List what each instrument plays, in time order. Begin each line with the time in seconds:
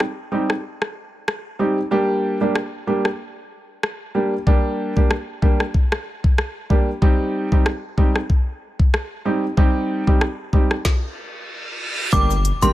0.00 cross-stick
0.32 grand piano G3 C4 D#4 G4
0.50 cross-stick
0.82 cross-stick
1.28 cross-stick
1.59 grand piano G3 C4 D#4 G4
1.91 grand piano G3 A#3 D4 G4
2.41 grand piano G3 A#3 D4 G4
2.55 cross-stick
2.87 grand piano G3 A#3 D4 G4
3.05 cross-stick
3.83 cross-stick
4.15 grand piano G3 A#3 D4 G4
4.46 grand piano G3 A#3 D4 G4, kick
4.96 grand piano G3 A#3 D4 G4, kick
5.11 cross-stick
5.42 grand piano G3 A#3 D4 G4, kick
5.60 cross-stick
5.74 kick
5.92 cross-stick
6.24 kick
6.38 cross-stick
6.70 grand piano G3 A#3 D4 G4, kick
7.02 grand piano G3 C4 D#4 G4, kick
7.52 grand piano G3 C4 D#4 G4, kick
7.66 cross-stick
7.98 grand piano G3 C4 D#4 G4, kick
8.16 cross-stick
8.30 kick
8.79 kick
8.94 cross-stick
9.25 grand piano G3 C4 D#4 G4
9.57 grand piano G3 C4 D#4 G4, kick
10.07 grand piano G3 C4 D#4 G4, kick
10.21 cross-stick
10.53 grand piano G3 C4 D#4 G4, kick
10.71 cross-stick
10.85 kick, snare, reverse cymbal
12.12 808-style bass G1, grand piano G3 A#3 D4 G4, synth bell D6, kick, impact, shaker, maracas
12.30 shaker, maracas
12.45 closed hi-hat, shaker
12.62 808-style bass G#1, grand piano G3 A#3 D4 G4, synth bell C6, maracas, shaker